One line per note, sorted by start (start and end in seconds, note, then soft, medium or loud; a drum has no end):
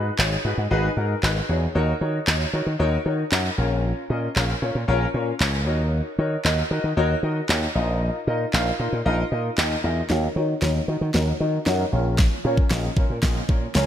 0.18 0.35 G#1 loud
0.18 0.35 D#4 medium
0.18 0.36 F#4 medium
0.18 0.36 G#4 medium
0.18 0.36 C#5 medium
0.18 clap loud
0.44 0.53 G#2 loud
0.44 0.62 D#4 medium
0.44 0.62 F#4 medium
0.44 0.62 G#4 medium
0.44 0.62 B4 medium
0.58 0.66 G#2 medium
0.71 0.88 G#1 loud
0.71 0.88 D#4 loud
0.71 0.88 F#4 loud
0.71 0.88 G#4 loud
0.71 0.88 B4 loud
0.97 1.14 G#2 medium
0.97 1.14 D#4 medium
0.97 1.14 F#4 medium
0.97 1.14 G#4 medium
0.97 1.14 A#4 medium
1.23 1.40 G#1 medium
1.23 1.40 D#4 medium
1.23 1.40 F#4 medium
1.23 1.40 G#4 medium
1.23 1.40 B4 medium
1.23 clap loud
1.49 1.66 E2 medium
1.49 1.66 D#4 medium
1.49 1.66 F#4 medium
1.49 1.66 G#4 medium
1.49 1.66 C#5 medium
1.75 1.92 D#2 loud
1.75 1.92 D#4 loud
1.75 1.92 F#4 loud
1.75 1.92 A#4 medium
1.75 1.92 C#5 loud
2.01 2.18 D#3 loud
2.01 2.18 D#4 medium
2.01 2.18 F#4 medium
2.01 2.18 A#4 medium
2.01 2.18 C#5 medium
2.27 2.44 D#2 medium
2.27 2.44 D#4 medium
2.27 2.44 F#4 medium
2.27 2.44 A#4 medium
2.27 2.44 C#5 medium
2.27 clap loud
2.53 2.62 D#3 medium
2.53 2.70 D#4 medium
2.53 2.70 F#4 medium
2.53 2.70 A#4 medium
2.53 2.70 C#5 medium
2.66 2.75 D#3 medium
2.79 2.96 D#2 loud
2.79 2.96 D#4 loud
2.79 2.96 F#4 loud
2.79 2.96 A#4 loud
2.79 2.97 C#5 loud
3.05 3.23 D#3 medium
3.05 3.22 D#4 medium
3.05 3.22 F#4 medium
3.05 3.23 A#4 medium
3.05 3.23 C#5 medium
3.31 3.49 F#2 medium
3.31 3.48 D#4 medium
3.31 3.49 F#4 medium
3.31 3.49 A#4 medium
3.31 3.49 C#5 medium
3.31 clap loud
3.57 3.92 A#1 medium
3.57 3.99 C#4 medium
3.57 3.99 F4 medium
3.57 4.00 A#4 medium
3.57 4.00 C#5 medium
4.10 4.27 A#2 medium
4.10 4.27 C#4 medium
4.10 4.27 F4 medium
4.10 4.27 A#4 medium
4.10 4.27 D#5 medium
4.36 4.53 A#1 loud
4.36 4.53 C#4 medium
4.36 4.53 F4 medium
4.36 4.53 A#4 medium
4.36 4.53 C#5 medium
4.36 clap loud
4.62 4.71 A#2 loud
4.62 4.79 C#4 medium
4.62 4.79 F4 medium
4.62 4.79 A#4 medium
4.62 4.79 C#5 medium
4.75 4.84 A#2 medium
4.88 5.05 A#1 loud
4.88 5.05 C#4 loud
4.88 5.05 F4 loud
4.88 5.05 A#4 loud
4.88 5.05 C#5 loud
5.14 5.31 A#2 loud
5.14 5.31 C#4 medium
5.14 5.31 F4 medium
5.14 5.31 A#4 medium
5.14 5.31 C#5 medium
5.40 5.66 C#2 medium
5.40 5.57 C#4 medium
5.40 5.57 F4 medium
5.40 5.57 A#4 medium
5.40 5.57 C#5 medium
5.40 clap loud
5.66 6.00 D#2 loud
5.66 6.08 D#4 medium
5.66 6.08 F#4 medium
5.66 6.08 A#4 medium
5.66 6.08 C#5 medium
6.18 6.35 D#3 medium
6.18 6.35 D#4 medium
6.18 6.36 F#4 medium
6.18 6.36 A#4 medium
6.18 6.36 C#5 medium
6.44 6.62 D#2 loud
6.44 6.61 D#4 medium
6.44 6.62 F#4 medium
6.44 6.62 A#4 medium
6.44 6.62 D#5 medium
6.44 clap loud
6.71 6.79 D#3 loud
6.71 6.88 D#4 medium
6.71 6.88 F#4 medium
6.71 6.88 A#4 medium
6.71 6.88 D#5 medium
6.84 6.92 D#3 medium
6.97 7.14 D#2 loud
6.97 7.14 D#4 loud
6.97 7.14 F#4 loud
6.97 7.14 A#4 loud
6.97 7.14 C#5 loud
7.23 7.40 D#3 loud
7.23 7.40 D#4 medium
7.23 7.40 F#4 medium
7.23 7.40 A#4 medium
7.23 7.40 D#5 medium
7.49 7.66 D#2 medium
7.49 7.66 D#4 medium
7.49 7.66 F#4 medium
7.49 7.66 A#4 medium
7.49 7.66 C#5 medium
7.49 clap loud
7.75 8.09 A#1 medium
7.75 8.17 D#4 medium
7.75 8.17 F4 medium
7.75 8.17 A#4 medium
7.75 8.17 D#5 medium
8.27 8.44 A#2 medium
8.27 8.44 D#4 medium
8.27 8.44 F4 medium
8.27 8.44 A#4 medium
8.27 8.44 D#5 medium
8.53 8.70 A#1 loud
8.53 8.70 D#4 medium
8.53 8.70 F4 medium
8.53 8.70 A#4 medium
8.53 8.71 F5 medium
8.53 clap loud
8.79 8.88 A#2 medium
8.79 8.96 D#4 medium
8.79 8.96 F4 medium
8.79 8.96 A#4 medium
8.79 8.97 D#5 medium
8.93 9.01 A#2 medium
9.05 9.23 A#1 medium
9.05 9.22 D#4 loud
9.05 9.22 F4 loud
9.05 9.23 A#4 loud
9.05 9.23 D#5 loud
9.31 9.49 A#2 medium
9.31 9.48 D#4 medium
9.31 9.49 F4 medium
9.31 9.49 A#4 medium
9.31 9.49 D#5 medium
9.57 9.75 D#2 medium
9.57 9.74 D#4 medium
9.57 9.75 F4 medium
9.57 9.75 A#4 medium
9.57 9.75 D#5 medium
9.57 clap loud
9.84 10.01 E2 medium
9.84 10.01 D#4 medium
9.84 10.01 F4 medium
9.84 10.01 A#4 medium
9.84 10.01 D#5 medium
10.09 10.27 D#2 loud
10.09 10.27 D#4 loud
10.09 10.27 F#4 medium
10.09 10.27 A#4 medium
10.09 10.27 C#5 loud
10.09 snare soft
10.36 10.53 D#3 loud
10.36 10.53 D#4 loud
10.36 10.53 F#4 medium
10.36 10.53 A#4 medium
10.36 10.53 C#5 loud
10.62 10.79 D#2 medium
10.62 10.79 D#4 medium
10.62 10.79 F#4 medium
10.62 10.79 A#4 medium
10.62 10.79 C#5 medium
10.62 snare medium
10.88 10.97 D#3 medium
10.88 11.05 D#4 medium
10.88 11.05 F#4 medium
10.88 11.05 A#4 medium
10.88 11.05 D#5 medium
11.01 11.10 D#3 medium
11.14 11.31 D#2 loud
11.14 11.31 D#4 medium
11.14 11.31 F#4 medium
11.14 11.31 A#4 medium
11.14 11.31 C#5 medium
11.14 snare medium
11.40 11.57 D#3 medium
11.40 11.57 D#4 medium
11.40 11.57 F#4 medium
11.40 11.57 A#4 medium
11.40 11.57 D#5 medium
11.66 11.83 F#2 medium
11.66 11.83 D#4 loud
11.66 11.83 F#4 medium
11.66 11.83 A#4 loud
11.66 11.83 C#5 loud
11.66 snare medium
11.92 12.26 A#1 medium
11.92 12.34 C#4 medium
11.92 12.34 F4 medium
11.92 12.34 A#4 medium
11.92 12.34 C#5 medium
12.18 kick loud
12.18 snare medium
12.44 12.62 A#2 medium
12.44 12.61 C#4 loud
12.44 12.62 F4 loud
12.44 12.62 A#4 medium
12.44 12.62 C#5 loud
12.57 kick medium
12.70 12.88 A#1 loud
12.70 12.88 C#4 medium
12.70 12.88 F4 medium
12.70 12.88 A#4 medium
12.70 12.88 D#5 medium
12.70 snare medium
12.97 13.05 A#2 loud
12.97 13.14 C#4 medium
12.97 13.14 F4 medium
12.97 13.14 A#4 medium
12.97 13.14 C#5 medium
12.97 kick medium
13.10 13.18 A#2 medium
13.23 13.40 A#1 loud
13.23 13.40 C#4 medium
13.23 13.40 F4 medium
13.23 13.40 A#4 medium
13.23 13.40 D#5 loud
13.23 kick loud
13.23 snare medium
13.49 13.66 A#2 loud
13.49 13.66 C#4 medium
13.49 13.66 F4 medium
13.49 13.66 A#4 medium
13.49 13.66 C#5 medium
13.49 kick medium
13.75 13.86 C#2 medium
13.75 13.86 C#4 loud
13.75 13.86 F4 loud
13.75 13.86 A#4 loud
13.75 13.86 C#5 loud
13.75 snare medium